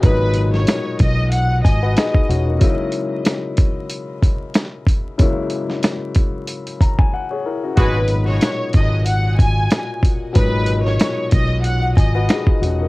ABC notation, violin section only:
X:1
M:4/4
L:1/16
Q:"Swing 16ths" 1/4=93
K:G#m
V:1 name="Violin section"
B3 c3 d2 f2 d3 z3 | z16 | z16 | B3 c3 d2 f2 g3 z3 |
B3 c3 d2 f2 d3 z3 |]